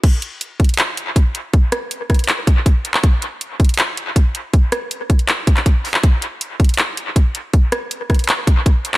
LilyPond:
\new DrumStaff \with { instrumentName = "Drums" } \drummode { \time 4/4 \tempo 4 = 160 <cymc hh bd>8 hh8 hh8 <hh bd>32 hh32 hh32 hh32 <hc hh>8 hh8 <hh bd>8 hh8 | <hh bd>8 <hh ss>8 hh8 <hh bd ss>32 hh32 hh32 hh32 <hc hh>8 <hh bd>8 <hh bd>8 hh16 hc16 | <hh bd>8 hh8 hh8 <hh bd>32 hh32 hh32 hh32 <hc hh>8 hh8 <hh bd>8 hh8 | <hh bd>8 <hh ss>8 hh8 <hh bd>16 hh16 <hc hh>8 <hh bd>16 <hc hh>16 <hh bd>8 hho16 hc16 |
<hh bd>8 hh8 hh8 <hh bd>32 hh32 hh32 hh32 <hc hh>8 hh8 <hh bd>8 hh8 | <hh bd>8 <hh ss>8 hh8 <hh bd ss>32 hh32 hh32 hh32 <hc hh>8 <hh bd>8 <hh bd>8 hh16 hc16 | }